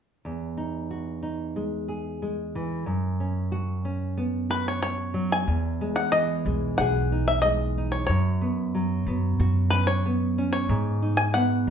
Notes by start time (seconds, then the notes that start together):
0.25 E2
0.57 D#4
0.91 F#4
1.23 D#4
1.56 G#3
1.88 G#4
2.22 G#3
2.55 E3
2.86 F#2
3.20 C#4
3.52 F#4
3.85 C#4
4.17 B3
4.50 F#4 B4
4.68 C#5
4.82 B3 C#5
5.14 F#3
5.32 G#5
5.47 E2
5.81 G#3
5.96 F#5
6.12 E3 D#5
6.45 B1 G#3
6.78 B1 G#4 F#5
7.12 D#4
7.28 E5
7.42 G#3 D#5
7.78 D#4
7.92 C#5
8.07 F#2 C#5
8.41 B3
8.75 F#3
9.06 F#2 B3
9.39 F#2 F#4
9.70 C#4 B4
9.87 C#5
10.06 B3
10.38 C#4
10.53 C#5
10.69 G#2
11.02 D#4
11.17 G#5
11.34 B3 F#5